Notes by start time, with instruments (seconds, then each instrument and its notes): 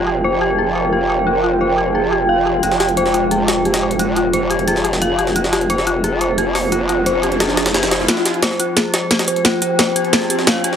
Already playing: wobble bass F1, ambient pad F4 A#4 G5
0.07 synth bell G4
0.24 synth bell C5
0.41 synth bell G4
0.58 synth bell G#4
0.75 synth bell C5
0.93 synth bell G4
1.10 synth bell C5
1.27 synth bell F4
1.44 synth bell F4
1.61 synth bell C5
1.78 synth bell G4
1.95 synth bell G#4
2.12 synth bell G4
2.29 synth bell F5
2.46 synth bell G4
2.63 wobble bass F1, ambient pad G#3, synth bell F4, closed hi-hat
2.72 snare
2.80 synth bell G4, snare, closed hi-hat
2.89 closed hi-hat
2.97 synth bell C5, closed hi-hat
3.06 snare
3.14 synth bell F4, closed hi-hat
3.31 synth bell G#4, closed hi-hat
3.48 synth bell C5, snare, closed hi-hat
3.65 synth bell G4, closed hi-hat
3.74 snare, closed hi-hat
3.82 synth bell C5
3.91 closed hi-hat
3.99 synth bell F4, closed hi-hat
4.16 synth bell F4, closed hi-hat
4.33 synth bell C5, closed hi-hat
4.50 synth bell G4, closed hi-hat
4.59 closed hi-hat
4.68 synth bell G#4, closed hi-hat
4.76 snare
4.85 synth bell G4, closed hi-hat
4.93 snare
5.02 synth bell F5, closed hi-hat
5.19 synth bell G4, closed hi-hat
5.27 snare
5.36 synth bell F4, ambient pad C5, closed hi-hat, riser
5.44 snare
5.53 synth bell G4, snare, closed hi-hat
5.61 closed hi-hat
5.70 synth bell C5, closed hi-hat
5.78 snare
5.87 synth bell F4, closed hi-hat
6.04 synth bell G#4, closed hi-hat
6.21 synth bell C5, closed hi-hat
6.38 synth bell G4, closed hi-hat
6.55 synth bell C5, snare, open hi-hat
6.72 synth bell F4, closed hi-hat
6.89 synth bell F4, closed hi-hat
7.06 synth bell C5, closed hi-hat
7.23 synth bell G4, closed hi-hat
7.32 closed hi-hat
7.40 synth bell G#4, snare, closed hi-hat
7.49 snare
7.57 synth bell G#4, snare, closed hi-hat
7.66 snare, closed hi-hat
7.74 synth bell G4, snare, closed hi-hat
7.83 snare, closed hi-hat
7.91 synth bell C5, snare, closed hi-hat
8.00 snare
8.08 synth bell F4, ambient pad F4 C5 G5, snare, closed hi-hat, riser
8.17 snare
8.25 synth bell G4, snare, closed hi-hat
8.34 closed hi-hat
8.43 synth bell C5, snare, closed hi-hat
8.51 snare
8.60 synth bell F4, closed hi-hat
8.77 synth bell G#4, snare, closed hi-hat
8.94 synth bell C5, snare, closed hi-hat
9.11 synth bell G4, snare, closed hi-hat
9.19 snare, closed hi-hat
9.28 synth bell C5, closed hi-hat
9.36 closed hi-hat
9.45 synth bell F4, snare, closed hi-hat
9.62 synth bell F4, closed hi-hat
9.79 synth bell C5, snare, closed hi-hat
9.96 synth bell G4, closed hi-hat
10.05 closed hi-hat
10.13 synth bell G#4, snare, closed hi-hat
10.22 snare
10.30 synth bell G4, closed hi-hat
10.39 snare
10.47 synth bell F5, snare, closed hi-hat
10.64 synth bell G4, closed hi-hat
10.73 snare